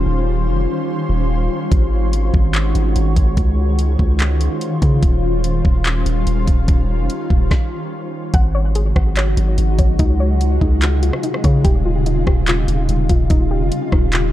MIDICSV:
0, 0, Header, 1, 5, 480
1, 0, Start_track
1, 0, Tempo, 413793
1, 71, Time_signature, 4, 2, 24, 8
1, 16615, End_track
2, 0, Start_track
2, 0, Title_t, "Synth pluck"
2, 0, Program_c, 0, 84
2, 9675, Note_on_c, 0, 78, 108
2, 9914, Note_on_c, 0, 73, 97
2, 10154, Note_on_c, 0, 68, 89
2, 10380, Note_off_c, 0, 78, 0
2, 10394, Note_on_c, 0, 78, 85
2, 10622, Note_off_c, 0, 73, 0
2, 10636, Note_on_c, 0, 73, 96
2, 11337, Note_off_c, 0, 73, 0
2, 11351, Note_on_c, 0, 73, 90
2, 11591, Note_off_c, 0, 73, 0
2, 11591, Note_on_c, 0, 63, 110
2, 11592, Note_off_c, 0, 68, 0
2, 11592, Note_off_c, 0, 78, 0
2, 11832, Note_on_c, 0, 73, 92
2, 12299, Note_off_c, 0, 63, 0
2, 12312, Note_on_c, 0, 63, 85
2, 12789, Note_on_c, 0, 65, 87
2, 13018, Note_off_c, 0, 63, 0
2, 13032, Note_on_c, 0, 63, 92
2, 13260, Note_off_c, 0, 73, 0
2, 13274, Note_on_c, 0, 73, 89
2, 13506, Note_on_c, 0, 67, 114
2, 13510, Note_off_c, 0, 65, 0
2, 13511, Note_off_c, 0, 63, 0
2, 13512, Note_off_c, 0, 73, 0
2, 13751, Note_on_c, 0, 65, 97
2, 13993, Note_on_c, 0, 63, 84
2, 14220, Note_off_c, 0, 67, 0
2, 14234, Note_on_c, 0, 67, 92
2, 14467, Note_off_c, 0, 65, 0
2, 14481, Note_on_c, 0, 65, 100
2, 15179, Note_off_c, 0, 65, 0
2, 15193, Note_on_c, 0, 65, 90
2, 15414, Note_off_c, 0, 63, 0
2, 15428, Note_on_c, 0, 63, 101
2, 15657, Note_off_c, 0, 67, 0
2, 15671, Note_on_c, 0, 67, 96
2, 16137, Note_off_c, 0, 63, 0
2, 16151, Note_on_c, 0, 63, 85
2, 16615, Note_off_c, 0, 63, 0
2, 16615, Note_off_c, 0, 65, 0
2, 16615, Note_off_c, 0, 67, 0
2, 16615, End_track
3, 0, Start_track
3, 0, Title_t, "Ambient pad"
3, 0, Program_c, 1, 92
3, 0, Note_on_c, 1, 51, 74
3, 0, Note_on_c, 1, 55, 69
3, 0, Note_on_c, 1, 61, 67
3, 0, Note_on_c, 1, 65, 68
3, 0, Note_on_c, 1, 72, 80
3, 1943, Note_off_c, 1, 65, 0
3, 1944, Note_off_c, 1, 72, 0
3, 1952, Note_off_c, 1, 55, 0
3, 1990, Note_on_c, 1, 73, 85
3, 1991, Note_on_c, 1, 56, 67
3, 1992, Note_on_c, 1, 66, 68
3, 3865, Note_off_c, 1, 51, 0
3, 3865, Note_off_c, 1, 61, 0
3, 3891, Note_off_c, 1, 73, 0
3, 3892, Note_off_c, 1, 66, 0
3, 3910, Note_on_c, 1, 72, 85
3, 3911, Note_on_c, 1, 51, 77
3, 3911, Note_on_c, 1, 61, 67
3, 3911, Note_on_c, 1, 65, 69
3, 5792, Note_off_c, 1, 56, 0
3, 5811, Note_off_c, 1, 51, 0
3, 5811, Note_off_c, 1, 61, 0
3, 5830, Note_on_c, 1, 55, 67
3, 5830, Note_on_c, 1, 61, 67
3, 5831, Note_on_c, 1, 51, 75
3, 8664, Note_off_c, 1, 65, 0
3, 8664, Note_off_c, 1, 72, 0
3, 8681, Note_off_c, 1, 61, 0
3, 8682, Note_off_c, 1, 51, 0
3, 8682, Note_off_c, 1, 55, 0
3, 9672, Note_on_c, 1, 54, 70
3, 9672, Note_on_c, 1, 56, 73
3, 9673, Note_on_c, 1, 49, 77
3, 9673, Note_on_c, 1, 63, 71
3, 9673, Note_on_c, 1, 66, 89
3, 11572, Note_off_c, 1, 54, 0
3, 11572, Note_off_c, 1, 63, 0
3, 11573, Note_off_c, 1, 66, 0
3, 11592, Note_on_c, 1, 48, 72
3, 11592, Note_on_c, 1, 63, 66
3, 11592, Note_on_c, 1, 65, 82
3, 13473, Note_off_c, 1, 56, 0
3, 13511, Note_on_c, 1, 55, 68
3, 16615, Note_off_c, 1, 48, 0
3, 16615, Note_off_c, 1, 49, 0
3, 16615, Note_off_c, 1, 55, 0
3, 16615, Note_off_c, 1, 63, 0
3, 16615, Note_off_c, 1, 65, 0
3, 16615, End_track
4, 0, Start_track
4, 0, Title_t, "808-style bass"
4, 0, Program_c, 2, 38
4, 70, Note_on_c, 2, 27, 99
4, 549, Note_on_c, 2, 29, 101
4, 567, Note_off_c, 2, 27, 0
4, 778, Note_off_c, 2, 29, 0
4, 1270, Note_on_c, 2, 27, 106
4, 1731, Note_off_c, 2, 27, 0
4, 1991, Note_on_c, 2, 32, 106
4, 2682, Note_off_c, 2, 32, 0
4, 2712, Note_on_c, 2, 32, 104
4, 3172, Note_off_c, 2, 32, 0
4, 3190, Note_on_c, 2, 32, 101
4, 3421, Note_off_c, 2, 32, 0
4, 3431, Note_on_c, 2, 32, 111
4, 3661, Note_off_c, 2, 32, 0
4, 3672, Note_on_c, 2, 32, 103
4, 3901, Note_off_c, 2, 32, 0
4, 3911, Note_on_c, 2, 37, 105
4, 4602, Note_off_c, 2, 37, 0
4, 4632, Note_on_c, 2, 37, 108
4, 5207, Note_off_c, 2, 37, 0
4, 5591, Note_on_c, 2, 49, 103
4, 5821, Note_off_c, 2, 49, 0
4, 5831, Note_on_c, 2, 27, 103
4, 6522, Note_off_c, 2, 27, 0
4, 6551, Note_on_c, 2, 27, 108
4, 7011, Note_off_c, 2, 27, 0
4, 7029, Note_on_c, 2, 27, 102
4, 7260, Note_off_c, 2, 27, 0
4, 7270, Note_on_c, 2, 27, 111
4, 7501, Note_off_c, 2, 27, 0
4, 7511, Note_on_c, 2, 27, 104
4, 7741, Note_off_c, 2, 27, 0
4, 7751, Note_on_c, 2, 27, 104
4, 8110, Note_on_c, 2, 29, 100
4, 8128, Note_off_c, 2, 27, 0
4, 8224, Note_off_c, 2, 29, 0
4, 8472, Note_on_c, 2, 27, 106
4, 8702, Note_off_c, 2, 27, 0
4, 9672, Note_on_c, 2, 32, 110
4, 10362, Note_off_c, 2, 32, 0
4, 10392, Note_on_c, 2, 32, 107
4, 10852, Note_off_c, 2, 32, 0
4, 10871, Note_on_c, 2, 32, 106
4, 11101, Note_off_c, 2, 32, 0
4, 11111, Note_on_c, 2, 32, 115
4, 11341, Note_off_c, 2, 32, 0
4, 11352, Note_on_c, 2, 32, 103
4, 11582, Note_off_c, 2, 32, 0
4, 11592, Note_on_c, 2, 37, 106
4, 12282, Note_off_c, 2, 37, 0
4, 12312, Note_on_c, 2, 37, 108
4, 12887, Note_off_c, 2, 37, 0
4, 13272, Note_on_c, 2, 49, 107
4, 13501, Note_off_c, 2, 49, 0
4, 13511, Note_on_c, 2, 27, 110
4, 14202, Note_off_c, 2, 27, 0
4, 14232, Note_on_c, 2, 27, 114
4, 14692, Note_off_c, 2, 27, 0
4, 14710, Note_on_c, 2, 27, 104
4, 14941, Note_off_c, 2, 27, 0
4, 14950, Note_on_c, 2, 27, 115
4, 15180, Note_off_c, 2, 27, 0
4, 15191, Note_on_c, 2, 27, 107
4, 15421, Note_off_c, 2, 27, 0
4, 15430, Note_on_c, 2, 27, 104
4, 15790, Note_on_c, 2, 29, 101
4, 15808, Note_off_c, 2, 27, 0
4, 15904, Note_off_c, 2, 29, 0
4, 16151, Note_on_c, 2, 27, 109
4, 16615, Note_off_c, 2, 27, 0
4, 16615, End_track
5, 0, Start_track
5, 0, Title_t, "Drums"
5, 1990, Note_on_c, 9, 42, 72
5, 1991, Note_on_c, 9, 36, 113
5, 2106, Note_off_c, 9, 42, 0
5, 2107, Note_off_c, 9, 36, 0
5, 2473, Note_on_c, 9, 42, 79
5, 2589, Note_off_c, 9, 42, 0
5, 2712, Note_on_c, 9, 36, 89
5, 2828, Note_off_c, 9, 36, 0
5, 2947, Note_on_c, 9, 42, 73
5, 2955, Note_on_c, 9, 39, 100
5, 3063, Note_off_c, 9, 42, 0
5, 3071, Note_off_c, 9, 39, 0
5, 3191, Note_on_c, 9, 42, 76
5, 3307, Note_off_c, 9, 42, 0
5, 3431, Note_on_c, 9, 42, 75
5, 3547, Note_off_c, 9, 42, 0
5, 3671, Note_on_c, 9, 36, 91
5, 3671, Note_on_c, 9, 42, 71
5, 3787, Note_off_c, 9, 36, 0
5, 3787, Note_off_c, 9, 42, 0
5, 3910, Note_on_c, 9, 42, 70
5, 3911, Note_on_c, 9, 36, 110
5, 4026, Note_off_c, 9, 42, 0
5, 4027, Note_off_c, 9, 36, 0
5, 4393, Note_on_c, 9, 42, 80
5, 4509, Note_off_c, 9, 42, 0
5, 4632, Note_on_c, 9, 36, 90
5, 4748, Note_off_c, 9, 36, 0
5, 4867, Note_on_c, 9, 42, 72
5, 4875, Note_on_c, 9, 39, 100
5, 4983, Note_off_c, 9, 42, 0
5, 4991, Note_off_c, 9, 39, 0
5, 5112, Note_on_c, 9, 42, 73
5, 5228, Note_off_c, 9, 42, 0
5, 5351, Note_on_c, 9, 42, 76
5, 5467, Note_off_c, 9, 42, 0
5, 5591, Note_on_c, 9, 36, 90
5, 5591, Note_on_c, 9, 42, 73
5, 5707, Note_off_c, 9, 36, 0
5, 5707, Note_off_c, 9, 42, 0
5, 5830, Note_on_c, 9, 42, 73
5, 5831, Note_on_c, 9, 36, 117
5, 5946, Note_off_c, 9, 42, 0
5, 5947, Note_off_c, 9, 36, 0
5, 6311, Note_on_c, 9, 42, 83
5, 6427, Note_off_c, 9, 42, 0
5, 6551, Note_on_c, 9, 36, 93
5, 6667, Note_off_c, 9, 36, 0
5, 6786, Note_on_c, 9, 42, 69
5, 6794, Note_on_c, 9, 39, 102
5, 6902, Note_off_c, 9, 42, 0
5, 6910, Note_off_c, 9, 39, 0
5, 7032, Note_on_c, 9, 42, 75
5, 7148, Note_off_c, 9, 42, 0
5, 7271, Note_on_c, 9, 42, 74
5, 7387, Note_off_c, 9, 42, 0
5, 7511, Note_on_c, 9, 36, 87
5, 7511, Note_on_c, 9, 42, 73
5, 7627, Note_off_c, 9, 36, 0
5, 7627, Note_off_c, 9, 42, 0
5, 7750, Note_on_c, 9, 42, 72
5, 7751, Note_on_c, 9, 36, 111
5, 7866, Note_off_c, 9, 42, 0
5, 7867, Note_off_c, 9, 36, 0
5, 8233, Note_on_c, 9, 42, 82
5, 8349, Note_off_c, 9, 42, 0
5, 8472, Note_on_c, 9, 36, 90
5, 8588, Note_off_c, 9, 36, 0
5, 8711, Note_on_c, 9, 36, 104
5, 8716, Note_on_c, 9, 38, 86
5, 8827, Note_off_c, 9, 36, 0
5, 8832, Note_off_c, 9, 38, 0
5, 9670, Note_on_c, 9, 42, 73
5, 9672, Note_on_c, 9, 36, 115
5, 9786, Note_off_c, 9, 42, 0
5, 9788, Note_off_c, 9, 36, 0
5, 10153, Note_on_c, 9, 42, 83
5, 10269, Note_off_c, 9, 42, 0
5, 10393, Note_on_c, 9, 36, 88
5, 10395, Note_on_c, 9, 37, 91
5, 10509, Note_off_c, 9, 36, 0
5, 10511, Note_off_c, 9, 37, 0
5, 10629, Note_on_c, 9, 42, 77
5, 10636, Note_on_c, 9, 39, 103
5, 10745, Note_off_c, 9, 42, 0
5, 10752, Note_off_c, 9, 39, 0
5, 10873, Note_on_c, 9, 42, 78
5, 10989, Note_off_c, 9, 42, 0
5, 11112, Note_on_c, 9, 42, 82
5, 11228, Note_off_c, 9, 42, 0
5, 11351, Note_on_c, 9, 42, 74
5, 11352, Note_on_c, 9, 36, 93
5, 11467, Note_off_c, 9, 42, 0
5, 11468, Note_off_c, 9, 36, 0
5, 11591, Note_on_c, 9, 42, 74
5, 11592, Note_on_c, 9, 36, 118
5, 11707, Note_off_c, 9, 42, 0
5, 11708, Note_off_c, 9, 36, 0
5, 12073, Note_on_c, 9, 42, 81
5, 12189, Note_off_c, 9, 42, 0
5, 12312, Note_on_c, 9, 36, 90
5, 12428, Note_off_c, 9, 36, 0
5, 12547, Note_on_c, 9, 42, 78
5, 12555, Note_on_c, 9, 39, 103
5, 12663, Note_off_c, 9, 42, 0
5, 12671, Note_off_c, 9, 39, 0
5, 12792, Note_on_c, 9, 42, 76
5, 12908, Note_off_c, 9, 42, 0
5, 12914, Note_on_c, 9, 37, 93
5, 13030, Note_off_c, 9, 37, 0
5, 13031, Note_on_c, 9, 42, 81
5, 13147, Note_off_c, 9, 42, 0
5, 13157, Note_on_c, 9, 37, 94
5, 13271, Note_on_c, 9, 42, 74
5, 13272, Note_on_c, 9, 36, 93
5, 13273, Note_off_c, 9, 37, 0
5, 13387, Note_off_c, 9, 42, 0
5, 13388, Note_off_c, 9, 36, 0
5, 13509, Note_on_c, 9, 42, 74
5, 13511, Note_on_c, 9, 36, 122
5, 13625, Note_off_c, 9, 42, 0
5, 13627, Note_off_c, 9, 36, 0
5, 13992, Note_on_c, 9, 42, 84
5, 14108, Note_off_c, 9, 42, 0
5, 14232, Note_on_c, 9, 36, 96
5, 14234, Note_on_c, 9, 37, 94
5, 14348, Note_off_c, 9, 36, 0
5, 14350, Note_off_c, 9, 37, 0
5, 14466, Note_on_c, 9, 42, 75
5, 14474, Note_on_c, 9, 39, 110
5, 14582, Note_off_c, 9, 42, 0
5, 14590, Note_off_c, 9, 39, 0
5, 14711, Note_on_c, 9, 42, 79
5, 14827, Note_off_c, 9, 42, 0
5, 14950, Note_on_c, 9, 42, 84
5, 15066, Note_off_c, 9, 42, 0
5, 15190, Note_on_c, 9, 42, 77
5, 15191, Note_on_c, 9, 36, 89
5, 15306, Note_off_c, 9, 42, 0
5, 15307, Note_off_c, 9, 36, 0
5, 15428, Note_on_c, 9, 42, 75
5, 15430, Note_on_c, 9, 36, 117
5, 15544, Note_off_c, 9, 42, 0
5, 15546, Note_off_c, 9, 36, 0
5, 15912, Note_on_c, 9, 42, 86
5, 16028, Note_off_c, 9, 42, 0
5, 16151, Note_on_c, 9, 36, 92
5, 16153, Note_on_c, 9, 37, 91
5, 16267, Note_off_c, 9, 36, 0
5, 16269, Note_off_c, 9, 37, 0
5, 16385, Note_on_c, 9, 42, 75
5, 16393, Note_on_c, 9, 39, 105
5, 16501, Note_off_c, 9, 42, 0
5, 16509, Note_off_c, 9, 39, 0
5, 16615, End_track
0, 0, End_of_file